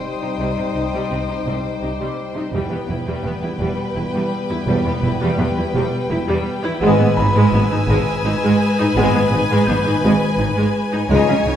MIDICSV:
0, 0, Header, 1, 10, 480
1, 0, Start_track
1, 0, Tempo, 714286
1, 263, Time_signature, 3, 2, 24, 8
1, 7768, End_track
2, 0, Start_track
2, 0, Title_t, "Violin section"
2, 0, Program_c, 0, 48
2, 0, Note_on_c, 0, 84, 46
2, 0, Note_on_c, 0, 87, 45
2, 911, Note_off_c, 0, 87, 0
2, 911, Note_on_c, 0, 86, 45
2, 1438, Note_off_c, 0, 84, 0
2, 1438, Note_off_c, 0, 86, 0
2, 4582, Note_on_c, 0, 88, 80
2, 4584, Note_on_c, 0, 87, 81
2, 6716, Note_off_c, 0, 88, 0
2, 7197, Note_off_c, 0, 87, 0
2, 7459, Note_on_c, 0, 85, 75
2, 7465, Note_on_c, 0, 87, 73
2, 7768, Note_off_c, 0, 85, 0
2, 7768, Note_off_c, 0, 87, 0
2, 7768, End_track
3, 0, Start_track
3, 0, Title_t, "Grand piano"
3, 0, Program_c, 1, 0
3, 0, Control_c, 1, 64, 127
3, 0, Note_on_c, 1, 83, 55
3, 956, Note_off_c, 1, 83, 0
3, 1715, Control_c, 1, 64, 0
3, 1826, Control_c, 1, 64, 127
3, 4595, Control_c, 1, 64, 0
3, 4687, Control_c, 1, 64, 127
3, 4818, Note_on_c, 1, 83, 110
3, 6234, Note_off_c, 1, 83, 0
3, 6496, Note_on_c, 1, 91, 69
3, 7477, Control_c, 1, 64, 0
3, 7585, Control_c, 1, 64, 127
3, 7768, Note_off_c, 1, 91, 0
3, 7768, End_track
4, 0, Start_track
4, 0, Title_t, "Violin section"
4, 0, Program_c, 2, 48
4, 0, Note_on_c, 2, 79, 53
4, 1677, Note_off_c, 2, 79, 0
4, 1701, Note_on_c, 2, 79, 68
4, 4555, Note_off_c, 2, 79, 0
4, 4580, Note_on_c, 2, 80, 104
4, 7435, Note_off_c, 2, 80, 0
4, 7461, Note_on_c, 2, 80, 105
4, 7768, Note_off_c, 2, 80, 0
4, 7768, End_track
5, 0, Start_track
5, 0, Title_t, "Violin section"
5, 0, Program_c, 3, 48
5, 0, Note_on_c, 3, 72, 53
5, 1678, Note_off_c, 3, 72, 0
5, 1709, Note_on_c, 3, 71, 68
5, 4573, Note_off_c, 3, 71, 0
5, 4581, Note_on_c, 3, 71, 90
5, 7435, Note_off_c, 3, 71, 0
5, 7462, Note_on_c, 3, 73, 76
5, 7768, Note_off_c, 3, 73, 0
5, 7768, End_track
6, 0, Start_track
6, 0, Title_t, "Viola section"
6, 0, Program_c, 4, 48
6, 145, Note_on_c, 4, 63, 61
6, 193, Note_off_c, 4, 63, 0
6, 259, Note_on_c, 4, 55, 67
6, 373, Note_off_c, 4, 55, 0
6, 380, Note_on_c, 4, 60, 45
6, 428, Note_off_c, 4, 60, 0
6, 500, Note_on_c, 4, 63, 54
6, 548, Note_off_c, 4, 63, 0
6, 624, Note_on_c, 4, 55, 89
6, 735, Note_off_c, 4, 55, 0
6, 735, Note_on_c, 4, 60, 56
6, 785, Note_off_c, 4, 60, 0
6, 861, Note_on_c, 4, 63, 51
6, 910, Note_off_c, 4, 63, 0
6, 983, Note_on_c, 4, 55, 63
6, 1095, Note_off_c, 4, 55, 0
6, 1224, Note_on_c, 4, 63, 65
6, 1272, Note_off_c, 4, 63, 0
6, 1345, Note_on_c, 4, 55, 72
6, 1456, Note_off_c, 4, 55, 0
6, 1587, Note_on_c, 4, 63, 73
6, 1635, Note_off_c, 4, 63, 0
6, 1709, Note_on_c, 4, 55, 91
6, 1818, Note_off_c, 4, 55, 0
6, 1831, Note_on_c, 4, 59, 55
6, 1877, Note_off_c, 4, 59, 0
6, 1951, Note_on_c, 4, 64, 63
6, 1998, Note_off_c, 4, 64, 0
6, 2066, Note_on_c, 4, 55, 90
6, 2176, Note_off_c, 4, 55, 0
6, 2187, Note_on_c, 4, 59, 72
6, 2234, Note_off_c, 4, 59, 0
6, 2302, Note_on_c, 4, 64, 59
6, 2350, Note_off_c, 4, 64, 0
6, 2422, Note_on_c, 4, 55, 90
6, 2535, Note_off_c, 4, 55, 0
6, 2663, Note_on_c, 4, 64, 66
6, 2711, Note_off_c, 4, 64, 0
6, 2784, Note_on_c, 4, 55, 77
6, 2895, Note_off_c, 4, 55, 0
6, 3024, Note_on_c, 4, 64, 85
6, 3072, Note_off_c, 4, 64, 0
6, 3143, Note_on_c, 4, 55, 90
6, 3255, Note_off_c, 4, 55, 0
6, 3263, Note_on_c, 4, 59, 77
6, 3311, Note_off_c, 4, 59, 0
6, 3382, Note_on_c, 4, 64, 94
6, 3430, Note_off_c, 4, 64, 0
6, 3501, Note_on_c, 4, 55, 101
6, 3614, Note_off_c, 4, 55, 0
6, 3619, Note_on_c, 4, 59, 73
6, 3668, Note_off_c, 4, 59, 0
6, 3742, Note_on_c, 4, 64, 77
6, 3790, Note_off_c, 4, 64, 0
6, 3862, Note_on_c, 4, 55, 89
6, 3974, Note_off_c, 4, 55, 0
6, 4103, Note_on_c, 4, 64, 97
6, 4151, Note_off_c, 4, 64, 0
6, 4218, Note_on_c, 4, 55, 104
6, 4332, Note_off_c, 4, 55, 0
6, 4460, Note_on_c, 4, 64, 113
6, 4509, Note_off_c, 4, 64, 0
6, 4582, Note_on_c, 4, 56, 118
6, 4694, Note_off_c, 4, 56, 0
6, 4702, Note_on_c, 4, 59, 74
6, 4751, Note_off_c, 4, 59, 0
6, 4827, Note_on_c, 4, 63, 100
6, 4874, Note_off_c, 4, 63, 0
6, 4941, Note_on_c, 4, 56, 127
6, 5054, Note_off_c, 4, 56, 0
6, 5065, Note_on_c, 4, 59, 91
6, 5113, Note_off_c, 4, 59, 0
6, 5182, Note_on_c, 4, 63, 82
6, 5230, Note_off_c, 4, 63, 0
6, 5303, Note_on_c, 4, 56, 124
6, 5415, Note_off_c, 4, 56, 0
6, 5546, Note_on_c, 4, 63, 94
6, 5594, Note_off_c, 4, 63, 0
6, 5668, Note_on_c, 4, 56, 112
6, 5778, Note_off_c, 4, 56, 0
6, 5904, Note_on_c, 4, 63, 115
6, 5952, Note_off_c, 4, 63, 0
6, 6027, Note_on_c, 4, 56, 127
6, 6137, Note_off_c, 4, 56, 0
6, 6144, Note_on_c, 4, 59, 71
6, 6192, Note_off_c, 4, 59, 0
6, 6264, Note_on_c, 4, 63, 92
6, 6312, Note_off_c, 4, 63, 0
6, 6386, Note_on_c, 4, 56, 127
6, 6497, Note_off_c, 4, 56, 0
6, 6503, Note_on_c, 4, 59, 83
6, 6551, Note_off_c, 4, 59, 0
6, 6625, Note_on_c, 4, 63, 85
6, 6672, Note_off_c, 4, 63, 0
6, 6744, Note_on_c, 4, 56, 112
6, 6855, Note_off_c, 4, 56, 0
6, 6982, Note_on_c, 4, 63, 86
6, 7031, Note_off_c, 4, 63, 0
6, 7103, Note_on_c, 4, 56, 93
6, 7215, Note_off_c, 4, 56, 0
6, 7342, Note_on_c, 4, 63, 98
6, 7390, Note_off_c, 4, 63, 0
6, 7461, Note_on_c, 4, 56, 110
6, 7574, Note_off_c, 4, 56, 0
6, 7582, Note_on_c, 4, 61, 68
6, 7631, Note_off_c, 4, 61, 0
6, 7702, Note_on_c, 4, 63, 77
6, 7750, Note_off_c, 4, 63, 0
6, 7768, End_track
7, 0, Start_track
7, 0, Title_t, "French horn section"
7, 0, Program_c, 5, 60
7, 0, Note_on_c, 5, 55, 64
7, 0, Note_on_c, 5, 63, 72
7, 1677, Note_off_c, 5, 55, 0
7, 1677, Note_off_c, 5, 63, 0
7, 1701, Note_on_c, 5, 59, 78
7, 1704, Note_on_c, 5, 55, 77
7, 4464, Note_off_c, 5, 55, 0
7, 4464, Note_off_c, 5, 59, 0
7, 4578, Note_on_c, 5, 59, 97
7, 4579, Note_on_c, 5, 56, 93
7, 4750, Note_off_c, 5, 59, 0
7, 4751, Note_off_c, 5, 56, 0
7, 6021, Note_on_c, 5, 59, 93
7, 6022, Note_on_c, 5, 56, 102
7, 6191, Note_off_c, 5, 59, 0
7, 6192, Note_off_c, 5, 56, 0
7, 7456, Note_on_c, 5, 56, 92
7, 7457, Note_on_c, 5, 63, 91
7, 7629, Note_off_c, 5, 56, 0
7, 7629, Note_off_c, 5, 63, 0
7, 7768, End_track
8, 0, Start_track
8, 0, Title_t, "Cello section"
8, 0, Program_c, 6, 48
8, 141, Note_on_c, 6, 48, 50
8, 189, Note_off_c, 6, 48, 0
8, 260, Note_on_c, 6, 48, 80
8, 309, Note_off_c, 6, 48, 0
8, 382, Note_on_c, 6, 48, 55
8, 430, Note_off_c, 6, 48, 0
8, 503, Note_on_c, 6, 48, 57
8, 551, Note_off_c, 6, 48, 0
8, 624, Note_on_c, 6, 48, 76
8, 672, Note_off_c, 6, 48, 0
8, 745, Note_on_c, 6, 48, 54
8, 793, Note_off_c, 6, 48, 0
8, 865, Note_on_c, 6, 48, 54
8, 913, Note_off_c, 6, 48, 0
8, 986, Note_on_c, 6, 48, 85
8, 1034, Note_off_c, 6, 48, 0
8, 1223, Note_on_c, 6, 48, 55
8, 1271, Note_off_c, 6, 48, 0
8, 1345, Note_on_c, 6, 48, 80
8, 1393, Note_off_c, 6, 48, 0
8, 1582, Note_on_c, 6, 48, 62
8, 1630, Note_off_c, 6, 48, 0
8, 1701, Note_on_c, 6, 40, 91
8, 1749, Note_off_c, 6, 40, 0
8, 1819, Note_on_c, 6, 40, 67
8, 1868, Note_off_c, 6, 40, 0
8, 1938, Note_on_c, 6, 40, 66
8, 1988, Note_off_c, 6, 40, 0
8, 2059, Note_on_c, 6, 40, 92
8, 2108, Note_off_c, 6, 40, 0
8, 2179, Note_on_c, 6, 40, 70
8, 2228, Note_off_c, 6, 40, 0
8, 2300, Note_on_c, 6, 40, 69
8, 2349, Note_off_c, 6, 40, 0
8, 2416, Note_on_c, 6, 40, 91
8, 2466, Note_off_c, 6, 40, 0
8, 2658, Note_on_c, 6, 40, 67
8, 2707, Note_off_c, 6, 40, 0
8, 2778, Note_on_c, 6, 40, 93
8, 2827, Note_off_c, 6, 40, 0
8, 3021, Note_on_c, 6, 40, 69
8, 3069, Note_off_c, 6, 40, 0
8, 3139, Note_on_c, 6, 40, 112
8, 3188, Note_off_c, 6, 40, 0
8, 3262, Note_on_c, 6, 40, 75
8, 3311, Note_off_c, 6, 40, 0
8, 3383, Note_on_c, 6, 40, 85
8, 3431, Note_off_c, 6, 40, 0
8, 3501, Note_on_c, 6, 40, 125
8, 3549, Note_off_c, 6, 40, 0
8, 3619, Note_on_c, 6, 40, 88
8, 3668, Note_off_c, 6, 40, 0
8, 3740, Note_on_c, 6, 40, 81
8, 3788, Note_off_c, 6, 40, 0
8, 3860, Note_on_c, 6, 40, 120
8, 3908, Note_off_c, 6, 40, 0
8, 4099, Note_on_c, 6, 40, 77
8, 4148, Note_off_c, 6, 40, 0
8, 4220, Note_on_c, 6, 40, 111
8, 4269, Note_off_c, 6, 40, 0
8, 4465, Note_on_c, 6, 40, 83
8, 4513, Note_off_c, 6, 40, 0
8, 4581, Note_on_c, 6, 44, 127
8, 4630, Note_off_c, 6, 44, 0
8, 4701, Note_on_c, 6, 44, 84
8, 4749, Note_off_c, 6, 44, 0
8, 4825, Note_on_c, 6, 44, 92
8, 4873, Note_off_c, 6, 44, 0
8, 4941, Note_on_c, 6, 44, 127
8, 4990, Note_off_c, 6, 44, 0
8, 5062, Note_on_c, 6, 44, 91
8, 5110, Note_off_c, 6, 44, 0
8, 5181, Note_on_c, 6, 44, 91
8, 5230, Note_off_c, 6, 44, 0
8, 5301, Note_on_c, 6, 44, 117
8, 5349, Note_off_c, 6, 44, 0
8, 5543, Note_on_c, 6, 44, 92
8, 5591, Note_off_c, 6, 44, 0
8, 5666, Note_on_c, 6, 44, 126
8, 5714, Note_off_c, 6, 44, 0
8, 5904, Note_on_c, 6, 44, 92
8, 5952, Note_off_c, 6, 44, 0
8, 6024, Note_on_c, 6, 44, 114
8, 6072, Note_off_c, 6, 44, 0
8, 6147, Note_on_c, 6, 44, 90
8, 6194, Note_off_c, 6, 44, 0
8, 6264, Note_on_c, 6, 44, 92
8, 6312, Note_off_c, 6, 44, 0
8, 6382, Note_on_c, 6, 44, 127
8, 6430, Note_off_c, 6, 44, 0
8, 6503, Note_on_c, 6, 44, 95
8, 6551, Note_off_c, 6, 44, 0
8, 6622, Note_on_c, 6, 44, 88
8, 6670, Note_off_c, 6, 44, 0
8, 6744, Note_on_c, 6, 44, 126
8, 6792, Note_off_c, 6, 44, 0
8, 6982, Note_on_c, 6, 44, 88
8, 7031, Note_off_c, 6, 44, 0
8, 7101, Note_on_c, 6, 44, 107
8, 7149, Note_off_c, 6, 44, 0
8, 7339, Note_on_c, 6, 44, 78
8, 7388, Note_off_c, 6, 44, 0
8, 7460, Note_on_c, 6, 49, 108
8, 7509, Note_off_c, 6, 49, 0
8, 7580, Note_on_c, 6, 49, 76
8, 7629, Note_off_c, 6, 49, 0
8, 7700, Note_on_c, 6, 49, 69
8, 7749, Note_off_c, 6, 49, 0
8, 7768, End_track
9, 0, Start_track
9, 0, Title_t, "Double bass section"
9, 0, Program_c, 7, 48
9, 255, Note_on_c, 7, 36, 68
9, 305, Note_off_c, 7, 36, 0
9, 497, Note_on_c, 7, 36, 51
9, 546, Note_off_c, 7, 36, 0
9, 737, Note_on_c, 7, 36, 50
9, 787, Note_off_c, 7, 36, 0
9, 977, Note_on_c, 7, 36, 78
9, 1026, Note_off_c, 7, 36, 0
9, 1217, Note_on_c, 7, 36, 60
9, 1266, Note_off_c, 7, 36, 0
9, 1698, Note_on_c, 7, 28, 89
9, 1747, Note_off_c, 7, 28, 0
9, 1937, Note_on_c, 7, 28, 74
9, 1987, Note_off_c, 7, 28, 0
9, 2180, Note_on_c, 7, 28, 58
9, 2228, Note_off_c, 7, 28, 0
9, 2421, Note_on_c, 7, 28, 86
9, 2469, Note_off_c, 7, 28, 0
9, 2659, Note_on_c, 7, 28, 75
9, 2708, Note_off_c, 7, 28, 0
9, 3138, Note_on_c, 7, 28, 113
9, 3187, Note_off_c, 7, 28, 0
9, 3382, Note_on_c, 7, 28, 90
9, 3430, Note_off_c, 7, 28, 0
9, 3621, Note_on_c, 7, 28, 77
9, 3669, Note_off_c, 7, 28, 0
9, 3858, Note_on_c, 7, 28, 109
9, 3907, Note_off_c, 7, 28, 0
9, 4097, Note_on_c, 7, 28, 86
9, 4146, Note_off_c, 7, 28, 0
9, 4578, Note_on_c, 7, 32, 124
9, 4627, Note_off_c, 7, 32, 0
9, 4817, Note_on_c, 7, 32, 100
9, 4866, Note_off_c, 7, 32, 0
9, 5056, Note_on_c, 7, 32, 89
9, 5105, Note_off_c, 7, 32, 0
9, 5297, Note_on_c, 7, 32, 110
9, 5346, Note_off_c, 7, 32, 0
9, 5535, Note_on_c, 7, 32, 91
9, 5584, Note_off_c, 7, 32, 0
9, 6017, Note_on_c, 7, 32, 117
9, 6067, Note_off_c, 7, 32, 0
9, 6256, Note_on_c, 7, 32, 102
9, 6305, Note_off_c, 7, 32, 0
9, 6493, Note_on_c, 7, 32, 79
9, 6543, Note_off_c, 7, 32, 0
9, 6735, Note_on_c, 7, 32, 121
9, 6785, Note_off_c, 7, 32, 0
9, 6974, Note_on_c, 7, 32, 86
9, 7024, Note_off_c, 7, 32, 0
9, 7453, Note_on_c, 7, 37, 116
9, 7503, Note_off_c, 7, 37, 0
9, 7694, Note_on_c, 7, 37, 82
9, 7744, Note_off_c, 7, 37, 0
9, 7768, End_track
10, 0, Start_track
10, 0, Title_t, "Impact"
10, 0, Program_c, 8, 103
10, 0, Note_on_c, 8, 60, 68
10, 263, Note_off_c, 8, 60, 0
10, 7768, End_track
0, 0, End_of_file